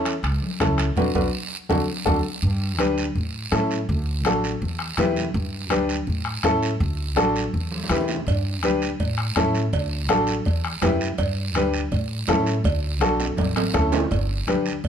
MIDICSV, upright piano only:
0, 0, Header, 1, 2, 480
1, 0, Start_track
1, 0, Key_signature, 2, "major"
1, 0, Tempo, 365186
1, 1272, Time_signature, 4, 2, 24, 8
1, 19558, End_track
2, 0, Start_track
2, 0, Title_t, "Upright piano"
2, 0, Program_c, 0, 0
2, 0, Note_on_c, 0, 61, 78
2, 0, Note_on_c, 0, 64, 71
2, 0, Note_on_c, 0, 69, 86
2, 166, Note_off_c, 0, 61, 0
2, 168, Note_off_c, 0, 64, 0
2, 171, Note_off_c, 0, 69, 0
2, 787, Note_on_c, 0, 61, 73
2, 795, Note_on_c, 0, 64, 63
2, 800, Note_on_c, 0, 69, 80
2, 1126, Note_off_c, 0, 61, 0
2, 1130, Note_off_c, 0, 64, 0
2, 1132, Note_off_c, 0, 69, 0
2, 1279, Note_on_c, 0, 66, 85
2, 1283, Note_on_c, 0, 71, 83
2, 1284, Note_on_c, 0, 62, 79
2, 1430, Note_off_c, 0, 66, 0
2, 1432, Note_off_c, 0, 71, 0
2, 1433, Note_off_c, 0, 62, 0
2, 1515, Note_on_c, 0, 62, 79
2, 1515, Note_on_c, 0, 71, 82
2, 1516, Note_on_c, 0, 66, 80
2, 1668, Note_off_c, 0, 62, 0
2, 1668, Note_off_c, 0, 66, 0
2, 1668, Note_off_c, 0, 71, 0
2, 2228, Note_on_c, 0, 69, 85
2, 2232, Note_on_c, 0, 62, 81
2, 2232, Note_on_c, 0, 66, 82
2, 2384, Note_off_c, 0, 69, 0
2, 2386, Note_off_c, 0, 66, 0
2, 2387, Note_off_c, 0, 62, 0
2, 2700, Note_on_c, 0, 66, 75
2, 2703, Note_on_c, 0, 69, 89
2, 2704, Note_on_c, 0, 62, 86
2, 2860, Note_off_c, 0, 66, 0
2, 2861, Note_off_c, 0, 69, 0
2, 2862, Note_off_c, 0, 62, 0
2, 3660, Note_on_c, 0, 62, 83
2, 3664, Note_on_c, 0, 67, 74
2, 3673, Note_on_c, 0, 71, 98
2, 4004, Note_off_c, 0, 62, 0
2, 4005, Note_off_c, 0, 67, 0
2, 4010, Note_off_c, 0, 71, 0
2, 4619, Note_on_c, 0, 61, 80
2, 4627, Note_on_c, 0, 69, 88
2, 4631, Note_on_c, 0, 64, 73
2, 4963, Note_off_c, 0, 61, 0
2, 4967, Note_off_c, 0, 69, 0
2, 4969, Note_off_c, 0, 64, 0
2, 5587, Note_on_c, 0, 62, 78
2, 5598, Note_on_c, 0, 66, 75
2, 5604, Note_on_c, 0, 69, 88
2, 5926, Note_off_c, 0, 62, 0
2, 5932, Note_off_c, 0, 66, 0
2, 5935, Note_off_c, 0, 69, 0
2, 6551, Note_on_c, 0, 64, 82
2, 6554, Note_on_c, 0, 67, 79
2, 6560, Note_on_c, 0, 71, 92
2, 6888, Note_off_c, 0, 64, 0
2, 6890, Note_off_c, 0, 67, 0
2, 6893, Note_off_c, 0, 71, 0
2, 7492, Note_on_c, 0, 62, 95
2, 7497, Note_on_c, 0, 67, 82
2, 7504, Note_on_c, 0, 71, 88
2, 7838, Note_off_c, 0, 62, 0
2, 7841, Note_off_c, 0, 67, 0
2, 7844, Note_off_c, 0, 71, 0
2, 8466, Note_on_c, 0, 61, 80
2, 8466, Note_on_c, 0, 64, 74
2, 8474, Note_on_c, 0, 69, 97
2, 8805, Note_off_c, 0, 61, 0
2, 8805, Note_off_c, 0, 64, 0
2, 8809, Note_off_c, 0, 69, 0
2, 9412, Note_on_c, 0, 62, 92
2, 9415, Note_on_c, 0, 66, 79
2, 9424, Note_on_c, 0, 69, 98
2, 9758, Note_off_c, 0, 62, 0
2, 9759, Note_off_c, 0, 66, 0
2, 9764, Note_off_c, 0, 69, 0
2, 10380, Note_on_c, 0, 64, 76
2, 10388, Note_on_c, 0, 67, 72
2, 10394, Note_on_c, 0, 71, 83
2, 10722, Note_off_c, 0, 64, 0
2, 10726, Note_off_c, 0, 67, 0
2, 10729, Note_off_c, 0, 71, 0
2, 11350, Note_on_c, 0, 62, 89
2, 11357, Note_on_c, 0, 67, 82
2, 11360, Note_on_c, 0, 71, 93
2, 11687, Note_off_c, 0, 62, 0
2, 11690, Note_off_c, 0, 67, 0
2, 11692, Note_off_c, 0, 71, 0
2, 12309, Note_on_c, 0, 61, 81
2, 12315, Note_on_c, 0, 64, 80
2, 12315, Note_on_c, 0, 69, 85
2, 12646, Note_off_c, 0, 61, 0
2, 12649, Note_off_c, 0, 64, 0
2, 12649, Note_off_c, 0, 69, 0
2, 13264, Note_on_c, 0, 62, 90
2, 13266, Note_on_c, 0, 66, 79
2, 13276, Note_on_c, 0, 69, 96
2, 13603, Note_off_c, 0, 62, 0
2, 13604, Note_off_c, 0, 66, 0
2, 13609, Note_off_c, 0, 69, 0
2, 14229, Note_on_c, 0, 67, 74
2, 14231, Note_on_c, 0, 64, 80
2, 14235, Note_on_c, 0, 71, 85
2, 14566, Note_off_c, 0, 67, 0
2, 14567, Note_off_c, 0, 64, 0
2, 14569, Note_off_c, 0, 71, 0
2, 15194, Note_on_c, 0, 62, 80
2, 15195, Note_on_c, 0, 67, 76
2, 15202, Note_on_c, 0, 71, 92
2, 15528, Note_off_c, 0, 62, 0
2, 15529, Note_off_c, 0, 67, 0
2, 15532, Note_off_c, 0, 71, 0
2, 16139, Note_on_c, 0, 61, 81
2, 16151, Note_on_c, 0, 64, 74
2, 16158, Note_on_c, 0, 69, 91
2, 16481, Note_off_c, 0, 61, 0
2, 16487, Note_off_c, 0, 64, 0
2, 16490, Note_off_c, 0, 69, 0
2, 17098, Note_on_c, 0, 62, 83
2, 17107, Note_on_c, 0, 66, 82
2, 17109, Note_on_c, 0, 69, 94
2, 17440, Note_off_c, 0, 62, 0
2, 17445, Note_off_c, 0, 66, 0
2, 17446, Note_off_c, 0, 69, 0
2, 18051, Note_on_c, 0, 61, 80
2, 18056, Note_on_c, 0, 64, 71
2, 18063, Note_on_c, 0, 69, 93
2, 18397, Note_off_c, 0, 61, 0
2, 18400, Note_off_c, 0, 64, 0
2, 18404, Note_off_c, 0, 69, 0
2, 19028, Note_on_c, 0, 62, 79
2, 19031, Note_on_c, 0, 67, 75
2, 19038, Note_on_c, 0, 71, 89
2, 19367, Note_off_c, 0, 62, 0
2, 19368, Note_off_c, 0, 67, 0
2, 19372, Note_off_c, 0, 71, 0
2, 19558, End_track
0, 0, End_of_file